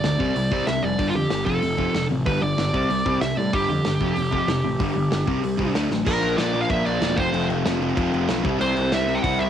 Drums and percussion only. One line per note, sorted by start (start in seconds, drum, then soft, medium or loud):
0.04 snare loud
0.04 open hi-hat medium
0.20 kick medium
0.36 open hi-hat medium
0.52 kick medium
0.67 snare loud
0.67 open hi-hat medium
0.99 kick loud
0.99 open hi-hat medium
1.31 snare medium
1.31 open hi-hat medium
1.47 kick medium
1.62 open hi-hat medium
1.79 kick medium
1.95 snare medium
1.95 open hi-hat medium
2.26 kick loud
2.26 open hi-hat medium
2.58 snare loud
2.58 open hi-hat medium
2.74 kick medium
2.90 open hi-hat medium
3.06 kick medium
3.22 snare loud
3.22 open hi-hat medium
3.53 kick loud
3.53 open hi-hat medium
3.85 snare loud
3.85 open hi-hat medium
4.01 kick medium
4.16 open hi-hat medium
4.32 kick medium
4.48 snare loud
4.48 open hi-hat medium
4.80 kick loud
4.80 open hi-hat medium
5.12 snare loud
5.12 open hi-hat soft
5.28 kick medium
5.44 open hi-hat medium
5.59 kick medium
5.75 snare loud
5.75 open hi-hat soft
5.91 snare medium
6.07 kick loud
6.07 crash loud
6.07 crash medium
6.22 crash medium
6.38 snare loud
6.38 crash medium
6.54 crash soft
6.70 kick loud
6.70 crash medium
6.86 crash medium
7.02 snare loud
7.02 crash medium
7.18 kick loud
7.18 crash medium
7.34 crash medium
7.50 crash medium
7.66 snare loud
7.66 crash medium
7.82 crash soft
7.97 kick loud
7.97 crash medium
8.14 crash medium
8.29 snare loud
8.29 crash medium
8.45 kick loud
8.45 crash medium
8.61 crash medium
8.77 crash medium
8.92 snare loud
8.92 crash medium
9.08 crash medium
9.24 kick loud
9.24 crash medium
9.40 crash medium